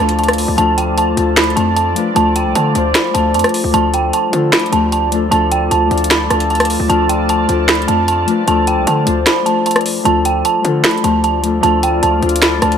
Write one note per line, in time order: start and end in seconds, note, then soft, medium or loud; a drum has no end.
0.00 0.46 D2 loud
0.00 0.54 F3 medium
0.00 0.56 A3 medium
0.00 0.58 D4 medium
0.00 3.70 F4 medium
0.00 0.59 F4 medium
0.00 0.60 A4 medium
0.00 0.55 D5 medium
0.00 0.14 A5 medium
0.00 3.70 A5 medium
0.09 closed hi-hat medium
0.19 0.56 A5 medium
0.19 closed hi-hat soft
0.24 closed hi-hat medium
0.28 cross-stick loud
0.28 closed hi-hat medium
0.33 closed hi-hat medium
0.38 open hi-hat medium
0.48 0.57 D2 loud
0.56 1.15 D2 loud
0.56 1.15 F3 loud
0.56 1.16 A3 loud
0.56 1.18 D4 medium
0.56 1.19 F4 loud
0.56 3.71 D5 medium
0.56 0.74 A5 loud
0.56 closed hi-hat medium
0.60 1.20 A4 loud
0.78 0.93 G5 medium
0.78 closed hi-hat medium
0.98 1.35 A5 medium
0.98 closed hi-hat medium
1.16 1.55 D2 loud
1.16 1.53 F3 medium
1.16 1.54 A3 medium
1.16 1.55 D4 medium
1.16 1.55 F4 medium
1.16 closed hi-hat medium
1.20 1.56 A4 medium
1.37 1.53 B5 medium
1.37 finger snap loud
1.37 snare loud
1.37 closed hi-hat medium
1.44 closed hi-hat medium
1.50 closed hi-hat soft
1.55 1.95 F2 loud
1.55 1.93 F3 medium
1.55 1.93 A3 medium
1.55 1.94 D4 medium
1.55 1.95 F4 medium
1.55 1.72 A5 medium
1.55 closed hi-hat medium
1.59 1.95 A4 medium
1.76 2.14 A5 medium
1.76 closed hi-hat medium
1.94 2.12 F3 medium
1.94 2.13 A3 medium
1.94 2.15 D4 medium
1.94 2.15 F4 medium
1.94 closed hi-hat medium
1.99 2.16 B4 medium
2.14 2.47 D2 loud
2.14 2.71 F3 loud
2.14 2.73 A3 loud
2.14 2.75 D4 medium
2.14 2.76 F4 medium
2.14 2.32 A5 loud
2.14 closed hi-hat medium
2.18 3.17 A4 loud
2.36 2.52 G5 medium
2.36 closed hi-hat medium
2.46 2.55 C2 loud
2.55 2.74 D3 loud
2.55 2.93 A5 medium
2.55 closed hi-hat medium
2.73 2.94 D2 loud
2.73 3.12 F3 medium
2.73 3.12 A3 medium
2.73 3.12 D4 medium
2.73 3.13 F4 medium
2.73 closed hi-hat medium
2.77 3.13 C5 medium
2.95 3.11 B5 medium
2.95 finger snap medium
2.95 snare loud
2.95 closed hi-hat medium
3.13 3.36 D2 loud
3.13 3.70 F3 medium
3.13 3.72 A3 medium
3.13 3.74 D4 medium
3.13 3.75 F4 medium
3.13 3.30 A5 medium
3.13 closed hi-hat medium
3.17 3.76 A4 medium
3.34 3.44 F2 loud
3.34 3.72 A5 medium
3.34 closed hi-hat medium
3.39 closed hi-hat medium
3.44 cross-stick loud
3.44 closed hi-hat medium
3.49 closed hi-hat soft
3.54 open hi-hat medium
3.64 3.73 D2 loud
3.72 4.12 D2 loud
3.72 4.30 F3 loud
3.72 4.32 A3 medium
3.72 4.33 D4 medium
3.72 10.01 F4 medium
3.72 4.34 F4 medium
3.72 10.01 D5 medium
3.72 10.01 A5 medium
3.72 3.90 A5 loud
3.72 closed hi-hat medium
3.76 4.35 A4 loud
3.94 4.09 G5 medium
3.94 closed hi-hat medium
4.13 4.51 A5 medium
4.13 closed hi-hat medium
4.31 4.52 D3 loud
4.31 4.69 F3 medium
4.31 4.70 A3 medium
4.31 4.70 D4 medium
4.31 4.71 F4 medium
4.31 closed hi-hat medium
4.35 4.71 A4 loud
4.52 4.68 B5 medium
4.52 finger snap loud
4.52 snare loud
4.52 closed hi-hat medium
4.59 closed hi-hat medium
4.66 closed hi-hat soft
4.71 5.29 D2 loud
4.71 5.09 F3 medium
4.71 5.09 A3 medium
4.71 5.10 D4 medium
4.71 5.10 F4 medium
4.71 4.88 A5 medium
4.71 closed hi-hat medium
4.75 5.11 G4 medium
4.92 5.30 A5 medium
4.92 closed hi-hat medium
5.10 5.28 F3 medium
5.10 5.29 A3 medium
5.10 5.30 D4 medium
5.10 5.31 F4 medium
5.10 closed hi-hat medium
5.15 5.32 A4 medium
5.29 5.70 D2 loud
5.29 5.87 F3 loud
5.29 5.89 A3 medium
5.29 5.90 D4 medium
5.29 5.92 F4 medium
5.29 5.47 A5 loud
5.29 closed hi-hat medium
5.34 5.93 A4 loud
5.52 5.67 G5 medium
5.52 closed hi-hat medium
5.71 5.90 D2 loud
5.71 6.08 A5 medium
5.71 closed hi-hat medium
5.88 6.29 D2 loud
5.88 6.27 F3 medium
5.88 6.27 A3 medium
5.88 6.28 D4 medium
5.88 6.29 F4 medium
5.88 closed hi-hat soft
5.93 6.29 A4 medium
5.98 closed hi-hat medium
6.04 closed hi-hat medium
6.11 6.27 B5 medium
6.11 finger snap loud
6.11 snare loud
6.11 closed hi-hat medium
6.29 6.78 D2 loud
6.29 6.86 F3 medium
6.29 6.88 A3 medium
6.29 6.89 D4 medium
6.29 6.90 F4 medium
6.29 6.46 A5 medium
6.29 cross-stick medium
6.29 closed hi-hat medium
6.33 6.91 A4 medium
6.40 closed hi-hat medium
6.50 6.88 A5 medium
6.50 closed hi-hat soft
6.55 closed hi-hat medium
6.60 cross-stick loud
6.60 closed hi-hat medium
6.65 closed hi-hat medium
6.70 open hi-hat medium
6.80 6.89 D2 loud
6.87 7.46 D2 loud
6.87 7.46 F3 loud
6.87 7.48 A3 medium
6.87 7.49 D4 loud
6.87 7.50 F4 medium
6.87 7.05 A5 loud
6.87 closed hi-hat medium
6.92 7.52 A4 loud
7.09 7.25 G5 medium
7.09 closed hi-hat medium
7.29 7.66 A5 medium
7.29 closed hi-hat medium
7.47 7.87 D2 loud
7.47 7.85 F3 medium
7.47 7.86 A3 medium
7.47 7.86 D4 medium
7.47 7.87 F4 medium
7.47 closed hi-hat medium
7.52 7.87 A4 medium
7.69 7.84 B5 medium
7.69 finger snap loud
7.69 snare loud
7.69 closed hi-hat medium
7.75 closed hi-hat medium
7.82 closed hi-hat soft
7.86 8.26 F2 loud
7.86 8.24 F3 medium
7.86 8.25 A3 medium
7.86 8.26 D4 medium
7.86 8.26 F4 medium
7.86 8.04 A5 medium
7.86 closed hi-hat medium
7.91 8.27 A4 medium
8.08 8.45 A5 medium
8.08 closed hi-hat medium
8.26 8.44 F3 medium
8.26 8.45 A3 medium
8.26 8.46 D4 medium
8.26 8.47 F4 medium
8.26 closed hi-hat medium
8.30 8.48 B4 medium
8.45 8.79 D2 loud
8.45 9.03 F3 loud
8.45 9.05 A3 loud
8.45 9.06 D4 medium
8.45 9.07 F4 medium
8.45 8.63 A5 loud
8.45 closed hi-hat medium
8.50 9.49 A4 loud
8.67 8.83 G5 medium
8.67 closed hi-hat medium
8.77 8.87 C2 loud
8.87 9.06 D3 loud
8.87 9.24 A5 medium
8.87 closed hi-hat medium
9.04 9.26 D2 loud
9.04 9.43 F3 medium
9.04 9.43 A3 medium
9.04 9.44 D4 medium
9.04 9.44 F4 medium
9.04 closed hi-hat medium
9.09 9.45 C5 loud
9.26 9.42 B5 medium
9.26 finger snap loud
9.26 snare loud
9.26 closed hi-hat medium
9.44 10.02 F3 medium
9.44 10.04 A3 medium
9.44 10.05 D4 medium
9.44 10.06 F4 medium
9.44 9.62 A5 medium
9.44 closed hi-hat medium
9.49 10.07 A4 medium
9.66 10.03 A5 medium
9.66 closed hi-hat medium
9.71 closed hi-hat medium
9.76 cross-stick loud
9.76 closed hi-hat medium
9.81 closed hi-hat soft
9.86 open hi-hat medium
10.03 10.43 D2 loud
10.03 10.61 F3 loud
10.03 10.63 A3 medium
10.03 10.64 D4 medium
10.03 12.78 F4 medium
10.03 10.65 F4 loud
10.03 12.78 D5 medium
10.03 10.21 A5 loud
10.03 12.78 A5 loud
10.03 closed hi-hat medium
10.08 10.67 A4 loud
10.25 10.41 G5 medium
10.25 closed hi-hat medium
10.45 10.82 A5 medium
10.45 closed hi-hat medium
10.62 10.84 D3 loud
10.62 11.01 F3 medium
10.62 11.01 A3 medium
10.62 11.02 D4 medium
10.62 11.02 F4 medium
10.62 closed hi-hat medium
10.67 11.03 A4 loud
10.84 11.00 B5 medium
10.84 finger snap medium
10.84 snare loud
10.84 closed hi-hat medium
10.91 closed hi-hat medium
10.98 closed hi-hat soft
11.02 11.61 D2 loud
11.02 11.41 F3 medium
11.02 11.41 A3 medium
11.02 11.41 D4 medium
11.02 11.42 F4 medium
11.02 11.20 A5 medium
11.02 closed hi-hat medium
11.07 11.43 G4 medium
11.24 11.61 A5 medium
11.24 closed hi-hat medium
11.42 11.59 F3 medium
11.42 11.60 A3 medium
11.42 11.62 D4 medium
11.42 11.63 F4 medium
11.42 closed hi-hat medium
11.47 11.64 A4 medium
11.61 12.01 D2 loud
11.61 12.19 F3 loud
11.61 12.21 A3 loud
11.61 12.22 D4 medium
11.61 12.23 F4 loud
11.61 11.79 A5 loud
11.61 closed hi-hat medium
11.65 12.24 A4 loud
11.83 11.99 G5 medium
11.83 closed hi-hat medium
12.03 12.22 D2 loud
12.03 12.40 A5 medium
12.03 closed hi-hat medium
12.20 12.60 D2 loud
12.20 12.59 F3 medium
12.20 12.59 A3 medium
12.20 12.60 D4 medium
12.20 12.60 F4 medium
12.20 closed hi-hat soft
12.25 12.61 A4 medium
12.29 closed hi-hat medium
12.36 closed hi-hat medium
12.42 12.58 B5 medium
12.42 finger snap loud
12.42 snare loud
12.42 closed hi-hat medium
12.60 12.78 D2 loud
12.60 12.78 F3 medium
12.60 12.78 A3 medium
12.60 12.78 D4 medium
12.60 12.78 F4 medium
12.60 12.78 A5 medium
12.60 cross-stick medium
12.60 closed hi-hat medium
12.65 12.78 A4 medium
12.72 closed hi-hat medium